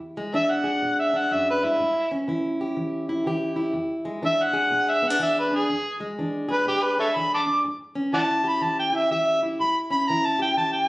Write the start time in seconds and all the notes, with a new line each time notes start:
Already playing: E2
0.17 G#3
0.33 E3 D4 E5
0.51 F#5
0.64 G#4
0.82 B2
1.00 E5
1.13 D4 F#5
1.31 F#2 E5
1.50 B4
1.63 G#2 E4
1.80 A2
2.11 C#4
2.28 E3 E4
2.61 G4
2.77 E3
3.09 E4
3.27 E3 G4
3.56 E4
3.73 E2
4.05 G#3
4.22 E3 D4 E5
4.43 F#5
4.53 G#4
4.71 B2
4.90 E5
5.02 B3
5.08 D4 F#5
5.19 E3 G#4 E5
5.39 B4
5.51 D4
5.55 G#4
5.69 E2
6.00 G#3
6.19 E3 D4
6.49 G#4 B4
6.66 B2 G4
6.84 B4
6.98 D4 A4 C#5 E5
7.16 E3 G#4 B5
7.34 A5 B5 D6
7.46 D4
7.64 A2
7.95 C#4
8.13 E3 E4 D5 F#5 A5
8.44 G4
8.48 B5
8.61 E3 A5
8.79 G5
8.92 E4 E5
9.11 E3 G4 E5
9.43 E4
9.60 A2 B5
9.90 C#4 B5
10.09 E3 E4 A#5
10.25 A5
10.39 G4 G5
10.57 E3 A5
10.73 G5